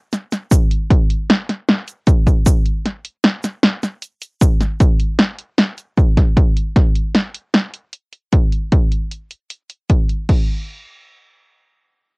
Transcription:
0.12 snare, closed hi-hat, shaker
0.32 snare, closed hi-hat, shaker
0.51 kick, closed hi-hat, shaker
0.71 closed hi-hat
0.91 kick, closed hi-hat
1.10 closed hi-hat
1.30 snare, closed hi-hat
1.49 snare, closed hi-hat
1.69 snare, closed hi-hat
1.88 closed hi-hat, shaker
2.07 kick, closed hi-hat, shaker
2.27 kick, closed hi-hat, shaker
2.46 kick, closed hi-hat, shaker
2.66 closed hi-hat
2.86 snare, closed hi-hat
3.05 closed hi-hat
3.24 snare, closed hi-hat
3.43 snare, closed hi-hat, shaker
3.63 snare, closed hi-hat
3.83 snare, closed hi-hat, shaker
4.02 closed hi-hat, shaker
4.21 closed hi-hat, shaker
4.41 kick, closed hi-hat, shaker
4.60 snare, closed hi-hat, shaker
4.80 kick, closed hi-hat, shaker
5.00 closed hi-hat
5.19 snare, closed hi-hat
5.39 closed hi-hat
5.58 snare, closed hi-hat
5.78 closed hi-hat, shaker
5.97 kick, closed hi-hat, shaker
6.17 kick, snare, closed hi-hat
6.37 kick, closed hi-hat
6.57 closed hi-hat
6.76 kick, snare, closed hi-hat
6.96 closed hi-hat
7.15 snare, closed hi-hat
7.35 closed hi-hat
7.54 snare, closed hi-hat
7.74 closed hi-hat
7.93 closed hi-hat
8.13 closed hi-hat
8.32 kick, closed hi-hat
8.52 closed hi-hat
8.72 kick, closed hi-hat
8.92 closed hi-hat
9.11 closed hi-hat
9.31 closed hi-hat
9.50 closed hi-hat
9.70 closed hi-hat
9.90 kick, closed hi-hat
10.09 closed hi-hat
10.29 kick, crash

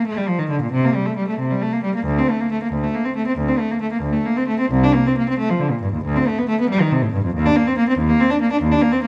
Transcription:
0.07 A3
0.17 G3
0.28 F3
0.39 D#3
0.50 D3
0.62 A#2
0.72 C3
0.85 A#3
0.95 G3
1.06 A3
1.17 G3
1.28 A3
1.39 C3
1.51 G3
1.62 A3
1.72 A#3
1.83 G3
1.95 A#3
2.06 D2
2.19 C4
2.30 A3
2.40 A#3
2.52 A3
2.63 A#3
2.72 D2
2.83 A3
2.94 A#3
3.05 C4
3.16 A3
3.27 C4
3.38 D2
3.48 C4
3.59 A3
3.71 A#3
3.81 A3
3.92 A#3
4.02 D2
4.13 A3
4.26 A#3
4.36 C4
4.48 A3
4.60 C4
4.71 C2
4.84 D4
4.95 A#3
5.07 C4
5.18 A#3
5.29 C4
5.38 A3
5.49 F3
5.60 D3
5.71 A#2
5.82 G2
5.93 D#2
6.04 D2
6.16 C4
6.28 A3
6.38 B3
6.49 A3
6.60 B3
6.70 G3
6.81 D#3
6.92 C3
7.02 A2
7.13 G2
7.24 F2
7.34 D#2
7.46 D4
7.56 A#3
7.67 C4
7.78 A#3
7.88 C4
7.98 D#2
8.09 A#3
8.20 C4
8.30 D4
8.41 A#3
8.52 D4
8.62 D#2
8.72 D4
8.82 A#3
8.92 C4
9.03 A#3

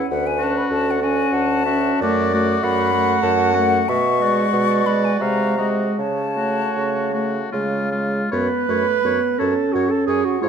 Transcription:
0.10 D2 B4 F#5
0.27 G#5
0.39 C#4 F#4
0.43 A5
0.58 B5
0.71 D2 A4 A5
0.91 F#5
1.02 C#4 F#4 G#5
1.32 D2 F#5 A5
1.65 C#4 F#4 E5
2.01 F#2 A3 F#4 D5 D6
2.34 A3 F#4
2.63 F#2 F#5 B5
2.93 A3 F#4
3.23 F#2 A5
3.54 A3 F#4 F#5
3.89 B2 E5 C#6
4.21 G#3 F#4 D5
4.53 B2
4.86 G#3 F#4 B5
5.05 G#5
5.19 C3 G#3 F#4 F5 A#5
5.57 G#3 F#4 D#5
5.99 C#3 C#5 A5
6.36 A3 F#4
6.77 C#3
7.13 A3 F#4
7.52 C#3 G#3 F4
7.92 G#3 F4
8.31 F#2 B3 B4 C#5 B5
8.68 F#2 A3 C#5
9.04 F#2 B3 C#5
9.39 F#2 C#4 A4 C#5 A5
9.73 F#2 F#4 C#5 F#5
9.90 A4 A5
10.06 F#2 G#4 C#5 G#5
10.25 F#4 F#5
10.41 G#2 G#3 F4 C#5 F5

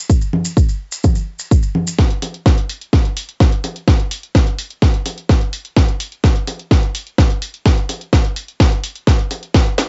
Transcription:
0.10 kick, maracas
0.21 maracas
0.33 low conga
0.45 maracas
0.57 kick, maracas
0.69 maracas
0.92 maracas
1.04 kick, low conga, maracas
1.15 maracas
1.39 maracas
1.51 kick, maracas
1.62 maracas
1.75 low conga
1.87 maracas
1.99 kick, snare, closed hi-hat
2.11 closed hi-hat
2.22 open hi-hat, low conga
2.34 closed hi-hat
2.46 kick, snare, closed hi-hat
2.58 closed hi-hat
2.70 open hi-hat
2.82 closed hi-hat
2.93 kick, snare, closed hi-hat, low conga
3.05 closed hi-hat
3.17 open hi-hat
3.29 closed hi-hat
3.40 kick, snare, closed hi-hat
3.52 closed hi-hat
3.64 open hi-hat, low conga
3.76 closed hi-hat
3.88 kick, snare, closed hi-hat
4.00 closed hi-hat
4.11 open hi-hat
4.23 closed hi-hat
4.35 kick, snare, closed hi-hat, low conga
4.47 closed hi-hat
4.59 open hi-hat
4.70 closed hi-hat
4.82 kick, snare, closed hi-hat
4.94 closed hi-hat
5.06 open hi-hat, low conga
5.18 closed hi-hat
5.29 kick, snare, closed hi-hat
5.41 closed hi-hat
5.53 open hi-hat
5.65 closed hi-hat
5.76 kick, snare, closed hi-hat, low conga
5.88 closed hi-hat
6.00 open hi-hat
6.12 closed hi-hat
6.24 kick, snare, closed hi-hat
6.36 closed hi-hat
6.47 open hi-hat, low conga
6.59 closed hi-hat
6.71 kick, snare, closed hi-hat
6.83 closed hi-hat
6.95 open hi-hat
7.07 closed hi-hat
7.18 kick, snare, closed hi-hat, low conga
7.30 closed hi-hat
7.42 open hi-hat
7.54 closed hi-hat
7.66 kick, snare, closed hi-hat
7.78 closed hi-hat
7.89 open hi-hat, low conga
8.01 closed hi-hat
8.13 kick, snare, closed hi-hat
8.25 closed hi-hat
8.36 open hi-hat
8.48 closed hi-hat
8.60 kick, snare, closed hi-hat, low conga
8.72 closed hi-hat
8.84 open hi-hat
8.96 closed hi-hat
9.07 kick, snare, closed hi-hat
9.19 closed hi-hat
9.31 open hi-hat, low conga
9.43 closed hi-hat
9.54 kick, snare, closed hi-hat
9.66 closed hi-hat
9.78 snare, open hi-hat, low conga

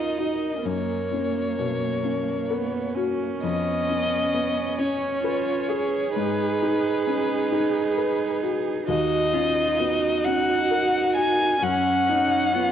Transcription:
Already playing: D#2 B3 C#4 D#4 F4 A#4 D#5
0.18 D#4 F#4
0.64 F#2 A#3 C#5
1.12 C#4
1.59 B2
2.03 A#3 C#4
2.49 B3 A#4
2.95 C#4 F#4
3.41 F2 B3 D#5
3.89 C#4
4.34 B3
4.79 C#4 C#5
5.24 F4 B4
5.69 G#4
6.16 G#2 D#4 B4
6.62 D#4
7.07 C#4
7.52 D#4
7.98 B4
8.43 F#4
8.87 D#2 D#4 F#4 D#5
9.33 C#4 F4
9.79 B3 F#4
10.25 C#4 F#5
10.71 A#4
11.16 F#4 G#5
11.62 F#2 C#4 F#5
12.09 C#4 D#4
12.55 B3 F4

